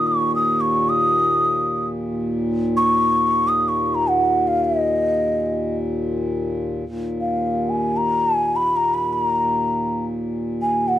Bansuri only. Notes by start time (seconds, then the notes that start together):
0.07 C#6
0.35 D#6
0.61 C#6
0.89 D#6
2.77 C#6
3.48 D#6
3.68 C#6
3.95 A#5
4.09 F#5
4.48 F5
4.64 D#5
7.21 F5
7.70 G#5
7.97 A#5
8.35 G#5
8.56 B5
8.76 A#5
8.94 B5
9.13 A#5
10.62 G#5
10.88 F#5